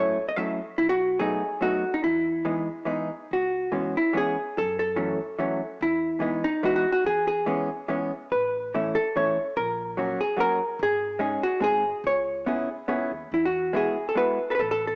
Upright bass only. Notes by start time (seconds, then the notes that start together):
0.79 B1
2.04 E2
3.31 C#2
4.58 F#2
5.81 E2
7.04 E2
8.31 A1
9.57 A#1
10.79 G#1
11.62 G#1
12.04 C#2
12.88 C#2
13.11 D#2
13.31 E2
14.58 A1